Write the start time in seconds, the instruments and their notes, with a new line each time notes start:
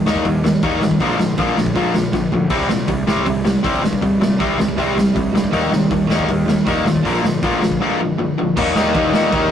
0.06 picked electric bass D#2, distorted electric guitar D#3 G3 A#3, overdriven electric guitar D#4, snare
0.16 kick
0.25 picked electric bass D#2, distorted electric guitar D#3 G3, overdriven electric guitar A#3, kick, open hi-hat
0.43 distorted electric guitar D#3 G3, overdriven electric guitar A#3, snare
0.62 picked electric bass D#2, distorted electric guitar D#3 G3 A#3, overdriven electric guitar D#4, kick, open hi-hat
0.82 picked electric bass G#1, distorted electric guitar D#3 G3, overdriven electric guitar A#3, snare
0.91 kick
1.00 picked electric bass A#1, distorted electric guitar A#2 D3 F3, overdriven electric guitar A#3, kick, open hi-hat
1.19 picked electric bass G#2, distorted electric guitar A#2 D3, overdriven electric guitar F3, snare
1.37 picked electric bass A#1, distorted electric guitar A#2 D3 F3, overdriven electric guitar A#3, kick, open hi-hat
1.56 picked electric bass A#1, distorted electric guitar A#2 D3, overdriven electric guitar F3, snare
1.66 kick
1.74 picked electric bass A#1, distorted electric guitar A#2 D3 F3, overdriven electric guitar A#3, kick, open hi-hat
1.93 distorted electric guitar A#2 D3, overdriven electric guitar F3, snare
2.12 picked electric bass A#1, distorted electric guitar A#2 D3, overdriven electric guitar F3, kick, snare
2.31 picked electric bass D2, distorted electric guitar A#2 D3, overdriven electric guitar F3, floor tom
2.50 picked electric bass C2, distorted electric guitar C3 G3 C4, kick, open hi-hat, crash
2.69 picked electric bass A#2, distorted electric guitar C3 G3, snare
2.87 picked electric bass C2, distorted electric guitar C3 G3, kick, open hi-hat
3.07 picked electric bass C2, distorted electric guitar C3 G3 C4, snare
3.17 kick
3.26 picked electric bass C2, distorted electric guitar C3 G3, kick, open hi-hat
3.45 distorted electric guitar C3 G3, snare
3.63 picked electric bass C2, distorted electric guitar C3 G3 C4, kick, open hi-hat
3.83 picked electric bass G2, distorted electric guitar C3 G3, snare
3.93 kick
4.01 picked electric bass C2, distorted electric guitar C3 G3, kick, open hi-hat
4.20 picked electric bass A#2, distorted electric guitar C3 G3, snare
4.38 picked electric bass C2, distorted electric guitar C3 G3 C4, kick, open hi-hat
4.57 picked electric bass C2, distorted electric guitar C3 G3, snare
4.69 kick
4.76 picked electric bass C2, distorted electric guitar C3 G3 C4, kick, open hi-hat
4.96 distorted electric guitar C3 G3, snare
5.13 picked electric bass C2, distorted electric guitar C3 G3, kick, open hi-hat
5.32 picked electric bass G2, distorted electric guitar C3 G3, snare
5.44 kick
5.51 picked electric bass D#2, distorted electric guitar D#3 G3 A#3, overdriven electric guitar D#4, kick, open hi-hat
5.70 picked electric bass C3, distorted electric guitar D#3 G3, overdriven electric guitar A#3, snare
5.89 picked electric bass D#2, distorted electric guitar D#3 G3, overdriven electric guitar A#3, kick, open hi-hat
6.07 picked electric bass D#2, distorted electric guitar D#3 G3 A#3, snare
6.11 overdriven electric guitar D#3 D#4
6.19 kick
6.26 picked electric bass D#2, distorted electric guitar D#3 G3, overdriven electric guitar A#3, kick, open hi-hat
6.45 distorted electric guitar D#3 G3, overdriven electric guitar A#3, snare
6.65 picked electric bass D#2, distorted electric guitar D#3 G3 A#3, overdriven electric guitar D#4, kick, open hi-hat
6.84 picked electric bass A#2, distorted electric guitar D#3 G3, overdriven electric guitar A#3, snare
6.96 kick
7.03 picked electric bass A#1, distorted electric guitar A#2 D3 F3, kick, open hi-hat
7.07 overdriven electric guitar A#3
7.23 picked electric bass G#2, distorted electric guitar A#2 D3, overdriven electric guitar F3, snare
7.42 picked electric bass A#1, distorted electric guitar A#2 D3 F3, overdriven electric guitar A#3, kick, open hi-hat
7.62 picked electric bass A#1, distorted electric guitar A#2 D3, overdriven electric guitar F3, snare
7.71 kick
7.80 distorted electric guitar A#2 D3 F3, overdriven electric guitar A#3
7.99 distorted electric guitar A#2 D3, overdriven electric guitar F3
8.18 distorted electric guitar A#2 D3, overdriven electric guitar F3
8.38 distorted electric guitar A#2 D3, overdriven electric guitar F3
8.56 picked electric bass D#2, distorted electric guitar D#3 G3 A#3 D#4, kick, crash
8.75 picked electric bass D#2, distorted electric guitar D#3 G3 A#3 D#4, snare
8.94 picked electric bass D#2, distorted electric guitar D#3 G3 A#3 D#4, kick, ride
9.12 picked electric bass A#2, distorted electric guitar D#3 G3 A#3 D#4, snare
9.32 picked electric bass D#2, distorted electric guitar D#3 G3 A#3 D#4, kick, ride